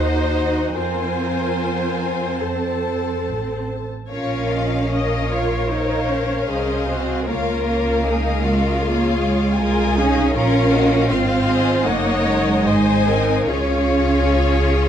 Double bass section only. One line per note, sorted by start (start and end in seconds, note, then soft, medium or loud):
0.00 0.73 D#2 medium
0.76 2.38 F2 medium
2.42 3.24 F2 soft
3.25 3.90 A1 soft
4.11 6.46 A#1 medium
6.50 7.27 C2 soft
7.29 9.58 C#2 medium
9.58 10.35 C2 medium
10.35 11.08 A#1 medium
11.11 11.87 G#1 medium
11.86 12.65 F#1 medium
12.67 13.49 G#1 medium
13.49 14.89 C#2 medium